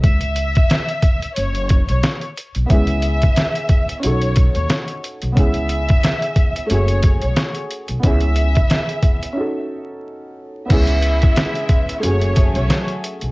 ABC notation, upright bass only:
X:1
M:4/4
L:1/16
Q:"Swing 16ths" 1/4=90
K:C#m
V:1 name="Upright bass" clef=bass
C,,4 z4 F,,,3 B,,, z3 B,,, | C,,4 z4 B,,,3 D,, z3 B,,, | C,,4 z4 F,,,3 B,,, z3 B,,, | C,,4 z12 |
C,,4 z4 F,,,3 B,,, z3 B,,, |]